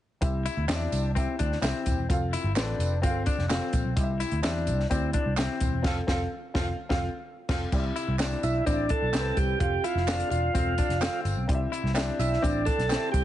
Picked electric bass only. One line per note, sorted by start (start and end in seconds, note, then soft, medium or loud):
0.21 0.47 C2 loud
0.57 0.65 D2 medium
0.69 0.85 E2 medium
0.92 1.26 C2 medium
1.40 1.56 D2 medium
1.62 1.71 C2 medium
1.86 1.95 D#1 medium
1.97 2.06 E1 medium
2.10 2.35 F1 medium
2.44 2.53 G1 medium
2.56 2.73 A1 medium
2.79 3.04 F1 medium
3.04 3.29 G1 loud
3.38 3.47 F1 medium
3.50 3.58 F1 medium
3.73 3.82 A#1 medium
3.85 3.93 B1 medium
3.97 4.22 C2 loud
4.32 4.40 D2 medium
4.67 4.84 C2 medium
4.91 5.16 D2 loud
5.26 5.34 C2 medium
5.61 5.70 D#1 medium
5.72 5.81 E1 medium
5.84 6.01 F1 medium
6.08 6.24 F1 loud
6.55 6.71 F1 loud
6.90 7.06 F1 loud
7.49 7.65 F1 medium
7.72 7.89 C2 loud
8.08 8.33 C2 medium
8.43 8.60 B1 loud
8.67 8.92 A1 medium
9.02 9.11 B1 medium
9.14 9.31 C2 medium
9.37 9.54 C2 medium
9.61 9.78 F1 medium
9.95 10.21 F1 medium
10.31 10.48 E1 medium
10.55 10.80 E1 medium
10.89 11.06 F1 medium
11.25 11.33 G1 medium
11.37 11.45 B1 medium
11.49 11.66 C2 loud
11.84 12.09 C2 medium
12.19 12.36 B1 medium
12.44 12.69 A1 medium
12.78 12.95 B1 medium
13.14 13.22 C2 medium